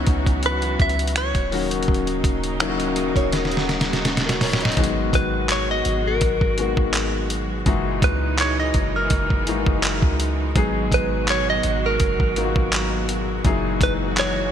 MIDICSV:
0, 0, Header, 1, 7, 480
1, 0, Start_track
1, 0, Key_signature, 5, "minor"
1, 0, Tempo, 722892
1, 1248, Time_signature, 4, 2, 24, 8
1, 9639, End_track
2, 0, Start_track
2, 0, Title_t, "Clean electric guitar"
2, 0, Program_c, 0, 27
2, 0, Note_on_c, 0, 73, 92
2, 302, Note_off_c, 0, 73, 0
2, 305, Note_on_c, 0, 71, 93
2, 520, Note_off_c, 0, 71, 0
2, 542, Note_on_c, 0, 76, 104
2, 778, Note_off_c, 0, 76, 0
2, 781, Note_on_c, 0, 73, 89
2, 1119, Note_off_c, 0, 73, 0
2, 3421, Note_on_c, 0, 71, 82
2, 3662, Note_off_c, 0, 71, 0
2, 3664, Note_on_c, 0, 73, 101
2, 3789, Note_off_c, 0, 73, 0
2, 3792, Note_on_c, 0, 75, 100
2, 4032, Note_off_c, 0, 75, 0
2, 4033, Note_on_c, 0, 70, 81
2, 4829, Note_off_c, 0, 70, 0
2, 5340, Note_on_c, 0, 71, 90
2, 5581, Note_off_c, 0, 71, 0
2, 5583, Note_on_c, 0, 73, 101
2, 5705, Note_off_c, 0, 73, 0
2, 5708, Note_on_c, 0, 75, 106
2, 5950, Note_off_c, 0, 75, 0
2, 5950, Note_on_c, 0, 70, 85
2, 6748, Note_off_c, 0, 70, 0
2, 7266, Note_on_c, 0, 71, 82
2, 7481, Note_off_c, 0, 71, 0
2, 7505, Note_on_c, 0, 73, 100
2, 7630, Note_off_c, 0, 73, 0
2, 7635, Note_on_c, 0, 75, 109
2, 7873, Note_off_c, 0, 75, 0
2, 7875, Note_on_c, 0, 70, 85
2, 8670, Note_off_c, 0, 70, 0
2, 9186, Note_on_c, 0, 71, 76
2, 9248, Note_off_c, 0, 71, 0
2, 9425, Note_on_c, 0, 73, 89
2, 9639, Note_off_c, 0, 73, 0
2, 9639, End_track
3, 0, Start_track
3, 0, Title_t, "Nylon-string guitar"
3, 0, Program_c, 1, 24
3, 1966, Note_on_c, 1, 75, 76
3, 2090, Note_off_c, 1, 75, 0
3, 2098, Note_on_c, 1, 73, 84
3, 2203, Note_off_c, 1, 73, 0
3, 2210, Note_on_c, 1, 70, 85
3, 2332, Note_off_c, 1, 70, 0
3, 2338, Note_on_c, 1, 66, 83
3, 2449, Note_off_c, 1, 66, 0
3, 2449, Note_on_c, 1, 68, 79
3, 2572, Note_off_c, 1, 68, 0
3, 2578, Note_on_c, 1, 66, 72
3, 3142, Note_off_c, 1, 66, 0
3, 9639, End_track
4, 0, Start_track
4, 0, Title_t, "Grand piano"
4, 0, Program_c, 2, 0
4, 0, Control_c, 2, 64, 127
4, 0, Note_on_c, 2, 54, 69
4, 0, Note_on_c, 2, 59, 69
4, 0, Note_on_c, 2, 61, 68
4, 0, Note_on_c, 2, 63, 71
4, 0, Note_on_c, 2, 64, 83
4, 674, Note_off_c, 2, 63, 0
4, 675, Note_off_c, 2, 54, 0
4, 678, Note_off_c, 2, 59, 0
4, 679, Note_off_c, 2, 61, 0
4, 681, Note_off_c, 2, 64, 0
4, 1006, Note_on_c, 2, 51, 82
4, 1011, Note_on_c, 2, 54, 74
4, 1013, Note_on_c, 2, 58, 77
4, 1016, Control_c, 2, 64, 0
4, 1017, Note_on_c, 2, 61, 73
4, 1020, Note_on_c, 2, 66, 93
4, 1146, Control_c, 2, 64, 127
4, 1657, Note_off_c, 2, 51, 0
4, 1659, Note_off_c, 2, 54, 0
4, 1660, Note_off_c, 2, 58, 0
4, 1662, Note_off_c, 2, 61, 0
4, 1664, Note_off_c, 2, 66, 0
4, 1728, Note_on_c, 2, 51, 88
4, 1730, Note_on_c, 2, 54, 85
4, 1734, Note_on_c, 2, 58, 85
4, 1737, Note_on_c, 2, 61, 81
4, 1740, Note_on_c, 2, 64, 82
4, 1781, Note_off_c, 2, 64, 0
4, 1783, Note_on_c, 2, 66, 93
4, 2594, Note_off_c, 2, 51, 0
4, 2596, Note_off_c, 2, 54, 0
4, 2598, Note_off_c, 2, 58, 0
4, 2599, Note_off_c, 2, 61, 0
4, 2622, Note_off_c, 2, 66, 0
4, 2824, Note_on_c, 2, 70, 67
4, 2827, Note_on_c, 2, 66, 55
4, 2926, Note_off_c, 2, 70, 0
4, 2928, Note_off_c, 2, 66, 0
4, 2937, Note_on_c, 2, 73, 73
4, 2940, Note_on_c, 2, 70, 67
4, 3056, Note_off_c, 2, 73, 0
4, 3058, Note_off_c, 2, 70, 0
4, 3068, Note_on_c, 2, 75, 66
4, 3170, Note_on_c, 2, 51, 84
4, 3173, Note_on_c, 2, 56, 80
4, 3176, Control_c, 2, 64, 0
4, 3176, Note_on_c, 2, 54, 75
4, 3179, Note_on_c, 2, 59, 81
4, 3182, Note_on_c, 2, 66, 92
4, 3284, Control_c, 2, 64, 127
4, 3291, Note_off_c, 2, 75, 0
4, 4036, Note_off_c, 2, 51, 0
4, 4037, Note_off_c, 2, 56, 0
4, 4038, Note_off_c, 2, 54, 0
4, 4040, Note_off_c, 2, 59, 0
4, 4041, Note_off_c, 2, 66, 0
4, 4368, Note_on_c, 2, 51, 72
4, 4372, Note_on_c, 2, 56, 64
4, 4374, Note_on_c, 2, 58, 66
4, 4377, Note_on_c, 2, 59, 68
4, 4382, Note_on_c, 2, 66, 80
4, 5018, Note_off_c, 2, 51, 0
4, 5020, Note_off_c, 2, 56, 0
4, 5021, Note_off_c, 2, 58, 0
4, 5022, Note_off_c, 2, 59, 0
4, 5025, Note_off_c, 2, 66, 0
4, 5086, Note_on_c, 2, 52, 84
4, 5088, Note_on_c, 2, 56, 76
4, 5091, Note_on_c, 2, 46, 81
4, 5094, Note_on_c, 2, 63, 74
4, 5097, Control_c, 2, 64, 0
4, 5098, Note_on_c, 2, 66, 95
4, 5220, Control_c, 2, 64, 127
4, 5953, Note_off_c, 2, 52, 0
4, 5955, Note_off_c, 2, 56, 0
4, 5956, Note_off_c, 2, 46, 0
4, 5957, Note_off_c, 2, 63, 0
4, 5959, Note_off_c, 2, 66, 0
4, 6287, Note_on_c, 2, 52, 71
4, 6291, Note_on_c, 2, 56, 67
4, 6294, Note_on_c, 2, 58, 65
4, 6297, Note_on_c, 2, 63, 68
4, 6300, Note_on_c, 2, 66, 77
4, 6937, Note_off_c, 2, 52, 0
4, 6939, Note_off_c, 2, 56, 0
4, 6941, Note_off_c, 2, 58, 0
4, 6942, Note_off_c, 2, 63, 0
4, 6944, Note_off_c, 2, 66, 0
4, 7007, Note_on_c, 2, 54, 85
4, 7010, Note_on_c, 2, 56, 81
4, 7014, Note_on_c, 2, 59, 78
4, 7017, Control_c, 2, 64, 0
4, 7017, Note_on_c, 2, 63, 78
4, 7019, Note_on_c, 2, 68, 94
4, 7123, Control_c, 2, 64, 127
4, 7874, Note_off_c, 2, 54, 0
4, 7875, Note_off_c, 2, 56, 0
4, 7877, Note_off_c, 2, 59, 0
4, 7879, Note_off_c, 2, 63, 0
4, 7880, Note_off_c, 2, 68, 0
4, 8207, Note_on_c, 2, 54, 73
4, 8209, Note_on_c, 2, 58, 69
4, 8213, Note_on_c, 2, 59, 64
4, 8215, Note_on_c, 2, 63, 70
4, 8220, Note_on_c, 2, 65, 64
4, 8261, Note_off_c, 2, 65, 0
4, 8263, Note_on_c, 2, 66, 79
4, 8857, Note_off_c, 2, 54, 0
4, 8858, Note_off_c, 2, 58, 0
4, 8860, Note_off_c, 2, 59, 0
4, 8861, Note_off_c, 2, 63, 0
4, 8886, Note_off_c, 2, 66, 0
4, 8929, Note_on_c, 2, 54, 89
4, 8931, Note_on_c, 2, 46, 74
4, 8936, Note_on_c, 2, 63, 80
4, 8937, Control_c, 2, 64, 0
4, 8938, Note_on_c, 2, 64, 77
4, 8942, Note_on_c, 2, 68, 88
4, 9052, Control_c, 2, 64, 127
4, 9639, Note_off_c, 2, 46, 0
4, 9639, Note_off_c, 2, 54, 0
4, 9639, Note_off_c, 2, 63, 0
4, 9639, Note_off_c, 2, 64, 0
4, 9639, Note_off_c, 2, 68, 0
4, 9639, End_track
5, 0, Start_track
5, 0, Title_t, "String section"
5, 0, Program_c, 3, 48
5, 0, Note_on_c, 3, 52, 76
5, 0, Note_on_c, 3, 54, 70
5, 0, Note_on_c, 3, 59, 67
5, 0, Note_on_c, 3, 66, 84
5, 992, Note_off_c, 3, 52, 0
5, 992, Note_off_c, 3, 59, 0
5, 992, Note_off_c, 3, 66, 0
5, 993, Note_off_c, 3, 54, 0
5, 1010, Note_on_c, 3, 49, 77
5, 1012, Note_on_c, 3, 54, 71
5, 1012, Note_on_c, 3, 58, 72
5, 1013, Note_on_c, 3, 63, 83
5, 3148, Note_off_c, 3, 49, 0
5, 3148, Note_off_c, 3, 54, 0
5, 3148, Note_off_c, 3, 58, 0
5, 3149, Note_off_c, 3, 63, 0
5, 3168, Note_on_c, 3, 66, 83
5, 3170, Note_on_c, 3, 47, 78
5, 3170, Note_on_c, 3, 56, 70
5, 3171, Note_on_c, 3, 54, 69
5, 5069, Note_off_c, 3, 66, 0
5, 5070, Note_off_c, 3, 47, 0
5, 5089, Note_on_c, 3, 52, 85
5, 5089, Note_on_c, 3, 63, 75
5, 6989, Note_off_c, 3, 63, 0
5, 6990, Note_off_c, 3, 52, 0
5, 7005, Note_on_c, 3, 47, 77
5, 7005, Note_on_c, 3, 66, 83
5, 8907, Note_off_c, 3, 47, 0
5, 8907, Note_off_c, 3, 66, 0
5, 8926, Note_on_c, 3, 66, 89
5, 8927, Note_on_c, 3, 52, 79
5, 9639, Note_off_c, 3, 52, 0
5, 9639, Note_off_c, 3, 54, 0
5, 9639, Note_off_c, 3, 56, 0
5, 9639, Note_off_c, 3, 66, 0
5, 9639, End_track
6, 0, Start_track
6, 0, Title_t, "808-style bass"
6, 0, Program_c, 4, 38
6, 48, Note_on_c, 4, 37, 105
6, 509, Note_off_c, 4, 37, 0
6, 529, Note_on_c, 4, 37, 101
6, 884, Note_off_c, 4, 37, 0
6, 897, Note_on_c, 4, 27, 105
6, 1234, Note_off_c, 4, 27, 0
6, 1251, Note_on_c, 4, 27, 107
6, 1480, Note_off_c, 4, 27, 0
6, 1489, Note_on_c, 4, 27, 104
6, 2074, Note_off_c, 4, 27, 0
6, 2099, Note_on_c, 4, 27, 105
6, 3142, Note_off_c, 4, 27, 0
6, 3169, Note_on_c, 4, 32, 112
6, 3399, Note_off_c, 4, 32, 0
6, 3409, Note_on_c, 4, 32, 98
6, 3869, Note_off_c, 4, 32, 0
6, 3890, Note_on_c, 4, 32, 108
6, 4119, Note_off_c, 4, 32, 0
6, 4128, Note_on_c, 4, 32, 110
6, 4483, Note_off_c, 4, 32, 0
6, 4498, Note_on_c, 4, 32, 102
6, 5065, Note_off_c, 4, 32, 0
6, 5089, Note_on_c, 4, 30, 110
6, 5319, Note_off_c, 4, 30, 0
6, 5328, Note_on_c, 4, 37, 102
6, 5789, Note_off_c, 4, 37, 0
6, 5808, Note_on_c, 4, 30, 100
6, 6039, Note_off_c, 4, 30, 0
6, 6047, Note_on_c, 4, 30, 101
6, 6290, Note_on_c, 4, 32, 98
6, 6300, Note_off_c, 4, 30, 0
6, 6412, Note_off_c, 4, 32, 0
6, 6419, Note_on_c, 4, 30, 104
6, 6649, Note_off_c, 4, 30, 0
6, 6657, Note_on_c, 4, 37, 99
6, 6994, Note_off_c, 4, 37, 0
6, 7010, Note_on_c, 4, 32, 112
6, 7240, Note_off_c, 4, 32, 0
6, 7250, Note_on_c, 4, 32, 107
6, 7710, Note_off_c, 4, 32, 0
6, 7731, Note_on_c, 4, 32, 106
6, 7960, Note_off_c, 4, 32, 0
6, 7970, Note_on_c, 4, 30, 107
6, 8094, Note_off_c, 4, 30, 0
6, 8101, Note_on_c, 4, 32, 100
6, 8330, Note_off_c, 4, 32, 0
6, 8340, Note_on_c, 4, 32, 103
6, 8906, Note_off_c, 4, 32, 0
6, 8931, Note_on_c, 4, 30, 119
6, 9160, Note_off_c, 4, 30, 0
6, 9170, Note_on_c, 4, 30, 104
6, 9630, Note_off_c, 4, 30, 0
6, 9639, End_track
7, 0, Start_track
7, 0, Title_t, "Drums"
7, 43, Note_on_c, 9, 42, 66
7, 47, Note_on_c, 9, 36, 91
7, 110, Note_off_c, 9, 42, 0
7, 114, Note_off_c, 9, 36, 0
7, 176, Note_on_c, 9, 36, 83
7, 179, Note_on_c, 9, 42, 48
7, 242, Note_off_c, 9, 36, 0
7, 246, Note_off_c, 9, 42, 0
7, 283, Note_on_c, 9, 42, 67
7, 350, Note_off_c, 9, 42, 0
7, 412, Note_on_c, 9, 42, 45
7, 478, Note_off_c, 9, 42, 0
7, 528, Note_on_c, 9, 36, 81
7, 529, Note_on_c, 9, 42, 37
7, 594, Note_off_c, 9, 42, 0
7, 594, Note_on_c, 9, 42, 45
7, 595, Note_off_c, 9, 36, 0
7, 659, Note_off_c, 9, 42, 0
7, 659, Note_on_c, 9, 42, 58
7, 714, Note_off_c, 9, 42, 0
7, 714, Note_on_c, 9, 42, 66
7, 768, Note_off_c, 9, 42, 0
7, 768, Note_on_c, 9, 42, 82
7, 769, Note_on_c, 9, 26, 120
7, 835, Note_off_c, 9, 26, 0
7, 835, Note_off_c, 9, 42, 0
7, 895, Note_on_c, 9, 36, 85
7, 895, Note_on_c, 9, 42, 52
7, 962, Note_off_c, 9, 36, 0
7, 962, Note_off_c, 9, 42, 0
7, 1011, Note_on_c, 9, 46, 78
7, 1078, Note_off_c, 9, 46, 0
7, 1137, Note_on_c, 9, 42, 75
7, 1204, Note_off_c, 9, 42, 0
7, 1212, Note_on_c, 9, 42, 60
7, 1249, Note_on_c, 9, 36, 107
7, 1279, Note_off_c, 9, 42, 0
7, 1291, Note_on_c, 9, 42, 41
7, 1315, Note_off_c, 9, 36, 0
7, 1357, Note_off_c, 9, 42, 0
7, 1376, Note_on_c, 9, 42, 53
7, 1442, Note_off_c, 9, 42, 0
7, 1487, Note_on_c, 9, 36, 95
7, 1491, Note_on_c, 9, 42, 75
7, 1554, Note_off_c, 9, 36, 0
7, 1557, Note_off_c, 9, 42, 0
7, 1617, Note_on_c, 9, 42, 54
7, 1684, Note_off_c, 9, 42, 0
7, 1727, Note_on_c, 9, 42, 60
7, 1729, Note_on_c, 9, 26, 115
7, 1793, Note_off_c, 9, 42, 0
7, 1795, Note_off_c, 9, 26, 0
7, 1857, Note_on_c, 9, 42, 56
7, 1924, Note_off_c, 9, 42, 0
7, 1965, Note_on_c, 9, 42, 70
7, 2032, Note_off_c, 9, 42, 0
7, 2096, Note_on_c, 9, 36, 90
7, 2101, Note_on_c, 9, 42, 51
7, 2163, Note_off_c, 9, 36, 0
7, 2167, Note_off_c, 9, 42, 0
7, 2208, Note_on_c, 9, 42, 67
7, 2212, Note_on_c, 9, 38, 58
7, 2274, Note_off_c, 9, 42, 0
7, 2278, Note_off_c, 9, 38, 0
7, 2291, Note_on_c, 9, 38, 50
7, 2334, Note_on_c, 9, 42, 46
7, 2358, Note_off_c, 9, 38, 0
7, 2371, Note_on_c, 9, 38, 66
7, 2400, Note_off_c, 9, 42, 0
7, 2438, Note_off_c, 9, 38, 0
7, 2450, Note_on_c, 9, 42, 40
7, 2451, Note_on_c, 9, 38, 60
7, 2517, Note_off_c, 9, 42, 0
7, 2518, Note_off_c, 9, 38, 0
7, 2530, Note_on_c, 9, 38, 74
7, 2530, Note_on_c, 9, 42, 46
7, 2596, Note_off_c, 9, 42, 0
7, 2597, Note_off_c, 9, 38, 0
7, 2611, Note_on_c, 9, 42, 48
7, 2612, Note_on_c, 9, 38, 68
7, 2677, Note_off_c, 9, 42, 0
7, 2678, Note_off_c, 9, 38, 0
7, 2689, Note_on_c, 9, 42, 55
7, 2690, Note_on_c, 9, 38, 89
7, 2755, Note_off_c, 9, 42, 0
7, 2756, Note_off_c, 9, 38, 0
7, 2770, Note_on_c, 9, 42, 61
7, 2771, Note_on_c, 9, 38, 79
7, 2836, Note_off_c, 9, 42, 0
7, 2837, Note_off_c, 9, 38, 0
7, 2849, Note_on_c, 9, 42, 68
7, 2850, Note_on_c, 9, 38, 92
7, 2916, Note_off_c, 9, 38, 0
7, 2916, Note_off_c, 9, 42, 0
7, 2928, Note_on_c, 9, 38, 82
7, 2930, Note_on_c, 9, 46, 78
7, 2995, Note_off_c, 9, 38, 0
7, 2996, Note_off_c, 9, 46, 0
7, 3010, Note_on_c, 9, 38, 101
7, 3059, Note_on_c, 9, 42, 48
7, 3077, Note_off_c, 9, 38, 0
7, 3089, Note_on_c, 9, 38, 95
7, 3125, Note_off_c, 9, 42, 0
7, 3132, Note_on_c, 9, 42, 61
7, 3155, Note_off_c, 9, 38, 0
7, 3167, Note_off_c, 9, 42, 0
7, 3167, Note_on_c, 9, 42, 54
7, 3168, Note_on_c, 9, 36, 110
7, 3211, Note_off_c, 9, 42, 0
7, 3211, Note_on_c, 9, 42, 75
7, 3235, Note_off_c, 9, 36, 0
7, 3277, Note_off_c, 9, 42, 0
7, 3407, Note_on_c, 9, 36, 99
7, 3410, Note_on_c, 9, 42, 73
7, 3473, Note_off_c, 9, 36, 0
7, 3477, Note_off_c, 9, 42, 0
7, 3644, Note_on_c, 9, 42, 64
7, 3646, Note_on_c, 9, 39, 122
7, 3711, Note_off_c, 9, 42, 0
7, 3713, Note_off_c, 9, 39, 0
7, 3884, Note_on_c, 9, 42, 62
7, 3951, Note_off_c, 9, 42, 0
7, 4123, Note_on_c, 9, 42, 70
7, 4127, Note_on_c, 9, 36, 96
7, 4189, Note_off_c, 9, 42, 0
7, 4193, Note_off_c, 9, 36, 0
7, 4258, Note_on_c, 9, 36, 88
7, 4324, Note_off_c, 9, 36, 0
7, 4367, Note_on_c, 9, 42, 67
7, 4433, Note_off_c, 9, 42, 0
7, 4496, Note_on_c, 9, 36, 93
7, 4563, Note_off_c, 9, 36, 0
7, 4605, Note_on_c, 9, 42, 82
7, 4606, Note_on_c, 9, 39, 124
7, 4672, Note_off_c, 9, 39, 0
7, 4672, Note_off_c, 9, 42, 0
7, 4848, Note_on_c, 9, 42, 77
7, 4914, Note_off_c, 9, 42, 0
7, 5086, Note_on_c, 9, 42, 57
7, 5087, Note_on_c, 9, 36, 109
7, 5153, Note_off_c, 9, 42, 0
7, 5154, Note_off_c, 9, 36, 0
7, 5327, Note_on_c, 9, 36, 100
7, 5330, Note_on_c, 9, 42, 71
7, 5393, Note_off_c, 9, 36, 0
7, 5396, Note_off_c, 9, 42, 0
7, 5565, Note_on_c, 9, 42, 67
7, 5567, Note_on_c, 9, 39, 113
7, 5632, Note_off_c, 9, 42, 0
7, 5634, Note_off_c, 9, 39, 0
7, 5803, Note_on_c, 9, 42, 64
7, 5807, Note_on_c, 9, 36, 93
7, 5869, Note_off_c, 9, 42, 0
7, 5873, Note_off_c, 9, 36, 0
7, 6043, Note_on_c, 9, 42, 70
7, 6047, Note_on_c, 9, 36, 89
7, 6109, Note_off_c, 9, 42, 0
7, 6113, Note_off_c, 9, 36, 0
7, 6178, Note_on_c, 9, 36, 92
7, 6244, Note_off_c, 9, 36, 0
7, 6288, Note_on_c, 9, 42, 66
7, 6354, Note_off_c, 9, 42, 0
7, 6417, Note_on_c, 9, 36, 99
7, 6484, Note_off_c, 9, 36, 0
7, 6529, Note_on_c, 9, 39, 115
7, 6529, Note_on_c, 9, 42, 81
7, 6595, Note_off_c, 9, 42, 0
7, 6596, Note_off_c, 9, 39, 0
7, 6656, Note_on_c, 9, 36, 93
7, 6722, Note_off_c, 9, 36, 0
7, 6770, Note_on_c, 9, 42, 78
7, 6837, Note_off_c, 9, 42, 0
7, 7009, Note_on_c, 9, 36, 111
7, 7009, Note_on_c, 9, 42, 59
7, 7075, Note_off_c, 9, 42, 0
7, 7076, Note_off_c, 9, 36, 0
7, 7248, Note_on_c, 9, 36, 91
7, 7252, Note_on_c, 9, 42, 73
7, 7315, Note_off_c, 9, 36, 0
7, 7318, Note_off_c, 9, 42, 0
7, 7487, Note_on_c, 9, 42, 65
7, 7489, Note_on_c, 9, 39, 109
7, 7554, Note_off_c, 9, 42, 0
7, 7556, Note_off_c, 9, 39, 0
7, 7725, Note_on_c, 9, 42, 66
7, 7792, Note_off_c, 9, 42, 0
7, 7966, Note_on_c, 9, 42, 70
7, 7969, Note_on_c, 9, 36, 92
7, 8032, Note_off_c, 9, 42, 0
7, 8035, Note_off_c, 9, 36, 0
7, 8100, Note_on_c, 9, 36, 88
7, 8166, Note_off_c, 9, 36, 0
7, 8209, Note_on_c, 9, 42, 62
7, 8276, Note_off_c, 9, 42, 0
7, 8339, Note_on_c, 9, 36, 96
7, 8405, Note_off_c, 9, 36, 0
7, 8450, Note_on_c, 9, 42, 80
7, 8451, Note_on_c, 9, 39, 121
7, 8517, Note_off_c, 9, 39, 0
7, 8517, Note_off_c, 9, 42, 0
7, 8691, Note_on_c, 9, 42, 79
7, 8757, Note_off_c, 9, 42, 0
7, 8928, Note_on_c, 9, 42, 57
7, 8929, Note_on_c, 9, 36, 107
7, 8994, Note_off_c, 9, 42, 0
7, 8995, Note_off_c, 9, 36, 0
7, 9168, Note_on_c, 9, 36, 95
7, 9172, Note_on_c, 9, 42, 80
7, 9234, Note_off_c, 9, 36, 0
7, 9238, Note_off_c, 9, 42, 0
7, 9407, Note_on_c, 9, 42, 65
7, 9409, Note_on_c, 9, 39, 118
7, 9473, Note_off_c, 9, 42, 0
7, 9475, Note_off_c, 9, 39, 0
7, 9639, End_track
0, 0, End_of_file